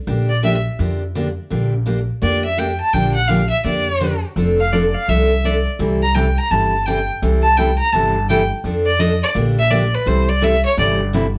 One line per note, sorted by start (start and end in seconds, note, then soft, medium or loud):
0.07 0.65 A#1 medium
0.07 0.30 D3 medium
0.07 0.30 F3 medium
0.07 0.30 A#3 medium
0.07 0.30 D4 medium
0.07 0.30 G4 medium
0.29 0.42 D5 medium
0.43 0.55 D3 medium
0.43 0.55 F3 medium
0.43 0.55 A#3 medium
0.43 0.55 D4 medium
0.43 0.56 G4 medium
0.43 0.58 E5 medium
0.79 1.36 F2 medium
0.79 1.01 D3 medium
0.79 1.02 F3 medium
0.79 1.02 A#3 medium
0.79 1.02 D4 medium
0.79 1.02 G4 medium
1.15 1.27 D3 medium
1.15 1.27 F3 medium
1.15 1.27 A#3 medium
1.15 1.27 D4 medium
1.15 1.27 G4 medium
1.50 2.08 A#1 medium
1.50 1.73 D3 medium
1.50 1.73 F3 medium
1.50 1.73 A#3 medium
1.50 1.73 D4 medium
1.50 1.73 G4 medium
1.86 1.98 D3 medium
1.86 1.98 F3 medium
1.86 1.98 A#3 medium
1.86 1.98 D4 medium
1.86 1.98 G4 medium
2.22 2.79 F2 medium
2.22 2.44 D3 medium
2.22 2.44 F3 medium
2.22 2.44 A#3 medium
2.22 2.44 D4 medium
2.22 2.44 G4 medium
2.22 2.44 D5 medium
2.45 2.60 E5 loud
2.57 2.69 D3 medium
2.57 2.69 F3 medium
2.57 2.70 A#3 medium
2.57 2.70 D4 medium
2.57 2.70 G4 medium
2.57 2.80 G5 medium
2.80 2.95 A5 loud
2.93 3.51 A#1 medium
2.93 3.16 D3 medium
2.93 3.16 F3 medium
2.93 3.16 A#3 medium
2.93 3.16 D4 medium
2.93 3.16 G4 medium
2.93 3.14 G5 medium
3.15 3.29 F#5 loud
3.28 3.41 D3 medium
3.28 3.41 F3 medium
3.28 3.41 A#3 medium
3.28 3.41 D4 medium
3.28 3.41 G4 medium
3.28 3.49 F5 medium
3.50 3.63 E5 medium
3.64 4.22 F2 medium
3.64 3.87 D3 medium
3.64 3.87 F3 medium
3.64 3.87 A#3 medium
3.64 3.87 D4 medium
3.64 3.88 G4 medium
3.64 4.20 D5 medium
4.00 4.12 D3 medium
4.00 4.12 F3 medium
4.00 4.12 A#3 medium
4.00 4.13 D4 medium
4.00 4.13 G4 medium
4.36 4.93 F1 medium
4.36 4.58 F3 medium
4.36 4.59 C4 medium
4.36 4.59 D4 medium
4.36 4.59 A4 medium
4.60 4.74 F5 loud
4.73 4.84 F3 medium
4.73 4.84 C4 medium
4.73 4.84 D4 medium
4.73 4.85 A4 medium
4.73 4.96 D5 medium
4.94 5.11 F5 loud
5.08 5.65 C2 medium
5.08 5.30 F3 medium
5.08 5.30 C4 medium
5.08 5.30 D4 medium
5.08 5.30 A4 medium
5.08 5.47 E5 medium
5.44 5.55 F3 medium
5.44 5.56 C4 medium
5.44 5.56 D4 medium
5.44 5.56 A4 medium
5.44 5.67 D5 medium
5.79 6.36 C2 medium
5.79 6.01 C3 medium
5.79 6.01 E3 medium
5.79 6.01 G3 medium
5.79 6.01 C4 medium
5.79 6.01 E4 medium
5.79 6.02 A4 medium
6.03 6.16 A#5 loud
6.15 6.27 C3 medium
6.15 6.26 E3 medium
6.15 6.27 G3 medium
6.15 6.27 C4 medium
6.15 6.27 E4 medium
6.15 6.27 A4 medium
6.15 6.39 G5 medium
6.38 6.52 A#5 loud
6.51 7.08 G1 medium
6.51 6.72 C3 medium
6.51 6.73 E3 medium
6.51 6.73 G3 medium
6.51 6.73 C4 medium
6.51 6.73 E4 medium
6.51 6.73 A4 medium
6.51 6.88 A5 loud
6.86 6.98 C3 medium
6.86 6.98 E3 medium
6.86 6.98 G3 medium
6.86 6.98 C4 medium
6.86 6.98 E4 medium
6.86 6.99 A4 medium
6.86 7.09 G5 medium
7.22 7.79 C2 medium
7.22 7.44 C3 medium
7.22 7.44 E3 medium
7.22 7.44 G3 medium
7.22 7.44 C4 medium
7.22 7.44 E4 medium
7.22 7.44 A4 medium
7.42 7.59 A5 loud
7.57 7.69 C3 medium
7.57 7.69 E3 medium
7.57 7.69 G3 medium
7.57 7.69 C4 medium
7.57 7.69 E4 medium
7.57 7.69 A4 medium
7.57 7.78 G5 loud
7.78 7.94 A#5 loud
7.92 8.50 G1 medium
7.92 8.15 C3 medium
7.92 8.15 E3 medium
7.92 8.15 G3 medium
7.92 8.15 C4 medium
7.92 8.15 E4 medium
7.92 8.16 A4 medium
7.92 8.28 A5 loud
8.29 8.41 C3 medium
8.29 8.41 E3 medium
8.29 8.41 G3 medium
8.29 8.41 C4 medium
8.29 8.41 E4 medium
8.29 8.41 A4 medium
8.29 8.42 G5 loud
8.64 9.21 F2 medium
8.64 8.86 F3 medium
8.64 8.87 C4 medium
8.64 8.87 D4 medium
8.64 8.87 A4 medium
8.86 9.01 D5 loud
8.99 9.11 F3 medium
8.99 9.11 C4 medium
8.99 9.11 D4 medium
8.99 9.11 A4 medium
8.99 9.22 D#5 loud
9.23 9.30 D5 loud
9.35 9.92 A#1 medium
9.35 9.57 D3 medium
9.35 9.57 F3 medium
9.35 9.57 A#3 medium
9.35 9.57 D4 medium
9.35 9.57 G4 medium
9.59 9.73 E5 loud
9.70 9.82 D3 medium
9.70 9.82 F3 medium
9.70 9.82 A#3 medium
9.70 9.83 D4 medium
9.70 9.82 G4 medium
9.70 9.96 D5 medium
9.94 10.09 B4 medium
10.06 10.63 C2 medium
10.06 10.28 C3 medium
10.06 10.28 E3 medium
10.06 10.28 G3 medium
10.06 10.29 C4 medium
10.06 10.29 E4 medium
10.06 10.28 A4 medium
10.06 10.30 C5 medium
10.29 10.45 D5 loud
10.41 10.53 C3 medium
10.41 10.53 E3 medium
10.41 10.53 G3 medium
10.41 10.53 C4 medium
10.41 10.54 E4 medium
10.41 10.54 A4 medium
10.41 10.65 E5 loud
10.66 10.77 C#5 loud
10.77 11.35 G1 medium
10.77 10.99 C3 medium
10.77 10.99 E3 medium
10.77 11.00 G3 medium
10.77 11.00 C4 medium
10.77 11.00 E4 medium
10.77 11.00 A4 medium
10.77 10.92 D5 loud
11.13 11.25 C3 medium
11.13 11.25 E3 medium
11.13 11.25 G3 medium
11.13 11.25 C4 medium
11.13 11.25 E4 medium
11.13 11.26 A4 medium